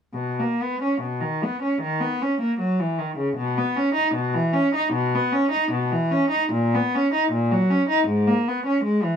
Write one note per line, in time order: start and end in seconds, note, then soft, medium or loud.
0.14 0.37 B2 soft
0.40 0.60 A#3 soft
0.62 0.82 B3 soft
0.82 1.01 C#4 soft
1.01 1.20 B2 soft
1.21 1.41 D#3 soft
1.43 1.62 B3 soft
1.62 1.80 C#4 soft
1.82 2.00 D#3 soft
2.01 2.19 B3 soft
2.22 2.40 C#4 soft
2.41 2.59 A#3 soft
2.60 2.78 F#3 soft
2.80 2.98 E3 soft
2.99 3.18 D#3 soft
3.18 3.36 C#3 soft
3.36 3.56 B2 medium
3.58 3.77 B3 medium
3.76 3.96 C#4 medium
3.94 4.15 D#4 medium
4.14 4.34 B2 medium
4.35 4.55 E3 medium
4.53 4.74 C#4 medium
4.75 4.94 D#4 medium
4.93 5.12 B2 medium
5.15 5.33 B3 medium
5.33 5.52 C#4 medium
5.51 5.70 D#4 medium
5.71 5.90 B2 medium
5.91 6.10 E3 medium
6.11 6.31 C#4 medium
6.30 6.50 D#4 medium
6.52 6.72 A#2 medium
6.74 6.93 B3 medium
6.95 7.12 C#4 medium
7.14 7.31 D#4 medium
7.32 7.49 A#2 medium
7.52 7.69 F#3 medium
7.71 7.88 C#4 medium
7.89 8.07 D#4 medium
8.08 8.26 G#2 medium
8.27 8.46 A#3 medium
8.48 8.67 B3 medium
8.66 8.85 C#4 soft
8.84 9.04 G#3 soft
9.03 9.16 E3 soft